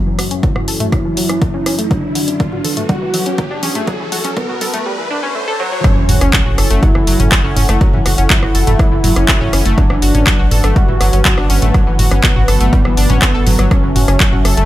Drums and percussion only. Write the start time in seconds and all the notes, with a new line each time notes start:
0.19 cross-stick, open hi-hat
0.31 closed hi-hat
0.43 kick, closed hi-hat, mid tom
0.56 cross-stick, mid tom
0.68 open hi-hat
0.80 closed hi-hat, mid tom
0.92 kick, cross-stick, closed hi-hat, mid tom
1.17 open hi-hat
1.29 cross-stick, closed hi-hat
1.42 kick, closed hi-hat, mid tom
1.66 cross-stick, open hi-hat
1.79 closed hi-hat
1.91 kick, closed hi-hat, mid tom
2.15 open hi-hat, mid tom
2.28 closed hi-hat
2.40 kick, closed hi-hat, mid tom
2.52 mid tom
2.65 open hi-hat, mid tom
2.77 closed hi-hat, mid tom
2.89 kick, closed hi-hat, mid tom
3.14 open hi-hat, mid tom
3.26 closed hi-hat
3.38 kick, closed hi-hat, mid tom
3.63 open hi-hat, mid tom
3.75 closed hi-hat, mid tom
3.87 kick, closed hi-hat, mid tom
4.00 mid tom
4.12 open hi-hat, mid tom
4.24 closed hi-hat, mid tom
4.37 kick, closed hi-hat, mid tom
4.49 mid tom
4.61 open hi-hat, mid tom
4.74 closed hi-hat, mid tom
5.84 kick, cross-stick, closed hi-hat
6.09 mid tom, open hi-hat
6.21 cross-stick, closed hi-hat
6.33 kick, clap, closed hi-hat
6.46 mid tom
6.58 cross-stick, open hi-hat
6.71 closed hi-hat
6.83 kick, closed hi-hat, mid tom
6.95 cross-stick
7.07 open hi-hat
7.20 closed hi-hat, mid tom
7.32 kick, cross-stick, clap, closed hi-hat
7.56 mid tom, open hi-hat
7.69 cross-stick, closed hi-hat
7.81 kick, closed hi-hat
7.93 mid tom
8.06 cross-stick, open hi-hat
8.18 closed hi-hat
8.30 kick, clap, mid tom
8.43 cross-stick
8.55 open hi-hat
8.67 closed hi-hat, mid tom
8.79 kick, cross-stick, closed hi-hat
9.04 mid tom, open hi-hat
9.16 cross-stick, closed hi-hat
9.28 kick, clap, closed hi-hat
9.41 mid tom
9.53 cross-stick, open hi-hat
9.66 closed hi-hat
9.78 kick, closed hi-hat, mid tom
9.90 cross-stick
10.02 open hi-hat
10.15 closed hi-hat, mid tom
10.27 kick, cross-stick, clap, closed hi-hat
10.51 mid tom, open hi-hat
10.64 cross-stick, closed hi-hat
10.76 kick, closed hi-hat
10.88 mid tom
11.01 cross-stick, open hi-hat
11.13 closed hi-hat
11.25 kick, clap, closed hi-hat, mid tom
11.38 cross-stick
11.50 open hi-hat
11.62 closed hi-hat, mid tom
11.74 kick, cross-stick, closed hi-hat
11.99 mid tom, open hi-hat
12.11 cross-stick, closed hi-hat
12.24 kick, clap, closed hi-hat
12.36 mid tom
12.48 cross-stick, open hi-hat
12.61 closed hi-hat
12.73 kick, closed hi-hat, mid tom
12.85 cross-stick
12.97 open hi-hat
13.10 closed hi-hat, mid tom
13.22 kick, cross-stick, clap, closed hi-hat
13.47 mid tom, open hi-hat
13.59 cross-stick, closed hi-hat
13.71 kick, cross-stick, closed hi-hat
13.96 mid tom, open hi-hat
14.08 cross-stick, closed hi-hat
14.20 kick, clap, closed hi-hat
14.33 mid tom
14.45 cross-stick, open hi-hat
14.57 closed hi-hat